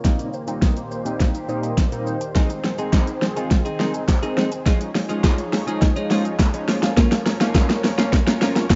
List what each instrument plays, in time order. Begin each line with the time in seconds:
Already playing: analog synth pad A#3
0.04 analog polysynth A#2 G3 A#3 C4 D#4, analog synth pad A#2 D#3 G4 C5, synth arpeggio sound A#3, kick, snare, closed hi-hat, shaker
0.19 synth arpeggio sound D#4, closed hi-hat, shaker
0.33 synth arpeggio sound C5, shaker
0.47 analog polysynth A#2 G3 A#3 C4 D#4, synth arpeggio sound G5, closed hi-hat, shaker
0.62 synth arpeggio sound A#3, kick, snare, closed hi-hat, shaker
0.77 synth arpeggio sound D#4, closed hi-hat, shaker
0.91 synth arpeggio sound C5, shaker
1.05 analog polysynth A#2 G3 A#3 C4 D#4, synth arpeggio sound G5, closed hi-hat, shaker
1.20 synth arpeggio sound A#3, kick, snare, closed hi-hat, shaker
1.35 synth arpeggio sound D#4, closed hi-hat, shaker
1.48 analog polysynth A#2 G3 A#3 C4 D#4, synth arpeggio sound C5, shaker
1.63 synth arpeggio sound G5, closed hi-hat, shaker
1.78 kick, snare, closed hi-hat, shaker
1.92 analog polysynth A#2 G3 A#3 C4 D#4, synth arpeggio sound D#4, closed hi-hat, shaker
2.07 synth arpeggio sound C5, shaker
2.21 synth arpeggio sound G5, closed hi-hat, shaker
2.35 analog polysynth D#3 G#3 C4 D#4, synth arpeggio sound G#3, analog synth pad C4 G#4, clean electric guitar C4 D#4 G#4, kick, snare, closed hi-hat, shaker
2.50 synth arpeggio sound D#4, muted clean electric guitar stroke, closed hi-hat, shaker
2.64 synth arpeggio sound C5, muted clean electric guitar stroke, snare, shaker
2.78 analog polysynth D#3 G#3 C4 D#4, clean electric guitar C4 D#4 G#4, synth arpeggio sound G#5, closed hi-hat, shaker
2.93 synth arpeggio sound G#3, clean electric guitar C4 D#4 G#4, kick, snare, clap, closed hi-hat, shaker
3.07 synth arpeggio sound D#4, muted clean electric guitar stroke, closed hi-hat, shaker
3.22 synth arpeggio sound C5, muted clean electric guitar stroke, snare, shaker
3.36 analog polysynth D#3 G#3 C4 F4, clean electric guitar C4 D#4 G#4, synth arpeggio sound G#5, closed hi-hat, shaker
3.51 synth arpeggio sound G#3, muted clean electric guitar stroke, kick, snare, closed hi-hat, shaker
3.65 clean electric guitar C4 D#4 G#4, synth arpeggio sound D#4, closed hi-hat, shaker
3.79 analog polysynth D#3 G#3 C4 D#4, clean electric guitar C4 D#4 G#4, synth arpeggio sound C5, snare, shaker
3.94 synth arpeggio sound G#5, muted clean electric guitar stroke, closed hi-hat, shaker
4.08 muted clean electric guitar stroke, kick, snare, clap, closed hi-hat, shaker
4.22 analog polysynth D#3 G#3 C4 D#4, clean electric guitar C4 D#4 G#4, synth arpeggio sound D#4, closed hi-hat, shaker
4.37 clean electric guitar C4 D#4 G#4, synth arpeggio sound C5, snare, shaker
4.52 synth arpeggio sound G#5, muted clean electric guitar stroke, closed hi-hat, shaker
4.66 analog polysynth F3 G#3 C#4 D#4, analog synth pad F3 D#4 G#4 C#5, clean electric guitar G#3 D#4 F4, synth arpeggio sound D#4, kick, snare, closed hi-hat, shaker
4.80 synth arpeggio sound C#5, muted clean electric guitar stroke, closed hi-hat, shaker
4.95 synth arpeggio sound F5, muted clean electric guitar stroke, snare, open hi-hat, shaker
5.09 analog polysynth F3 G#3 C#4 F4, clean electric guitar G#3 D#4 F4, synth arpeggio sound D#6, closed hi-hat, shaker
5.24 clean electric guitar G#3 D#4 F4, synth arpeggio sound D#4, kick, snare, clap, closed hi-hat, shaker
5.38 synth arpeggio sound C#5, muted clean electric guitar stroke, closed hi-hat, shaker
5.53 synth arpeggio sound F5, muted clean electric guitar stroke, snare, open hi-hat, shaker
5.67 analog polysynth F3 G#3 C#4 D#4, clean electric guitar G#3 D#4 F4, synth arpeggio sound D#6, closed hi-hat, shaker
5.82 synth arpeggio sound D#4, kick, snare, closed hi-hat, shaker
5.96 clean electric guitar G#3 D#4 F4, synth arpeggio sound C#5, closed hi-hat, shaker
6.10 analog polysynth F3 G#3 C#4 F4, clean electric guitar G#3 D#4 F4, synth arpeggio sound F5, snare, open hi-hat, shaker
6.25 synth arpeggio sound D#6, muted clean electric guitar stroke, closed hi-hat, shaker
6.39 muted clean electric guitar stroke, kick, snare, clap, closed hi-hat, shaker
6.54 analog polysynth F3 G#3 C#4 D#4, synth arpeggio sound C#5, muted clean electric guitar stroke, closed hi-hat, shaker
6.68 analog polysynth F3 A#3 C#4 F4, analog synth pad F3 C#4 A#4 C#5, synth arpeggio sound A#4, snare, open hi-hat, shaker
6.83 synth arpeggio sound F5, muted clean electric guitar stroke, snare, closed hi-hat, shaker
6.97 clean electric guitar A#3 C#4 F4, synth arpeggio sound A#3, kick, snare, closed hi-hat, shaker
7.12 synth arpeggio sound C#4, muted clean electric guitar stroke, snare, closed hi-hat, shaker
7.26 synth arpeggio sound A#4, muted clean electric guitar stroke, snare, open hi-hat, shaker
7.40 analog polysynth F3 A#3 C#4 D#4, clean electric guitar A#3 C#4 F4, synth arpeggio sound F5, snare, closed hi-hat, shaker
7.55 clean electric guitar A#3 C#4 F4, synth arpeggio sound A#3, kick, snare, clap, closed hi-hat, shaker
7.69 synth arpeggio sound C#4, muted clean electric guitar stroke, snare, closed hi-hat, shaker
7.83 synth arpeggio sound A#4, muted clean electric guitar stroke, snare, open hi-hat, shaker
7.98 analog polysynth F3 A#3 C#4 F4, clean electric guitar A#3 C#4 F4, synth arpeggio sound F5, snare, closed hi-hat, shaker
8.12 synth arpeggio sound A#3, muted clean electric guitar stroke, kick, snare, closed hi-hat, shaker
8.26 clean electric guitar A#3 C#4 F4, synth arpeggio sound C#4, snare, closed hi-hat, shaker
8.41 analog polysynth F3 A#3 C#4 F4, clean electric guitar A#3 C#4 F4, synth arpeggio sound A#4, snare, open hi-hat, shaker
8.55 synth arpeggio sound F5, muted clean electric guitar stroke, snare, closed hi-hat, shaker
8.70 muted clean electric guitar stroke, kick, snare, clap, closed hi-hat, shaker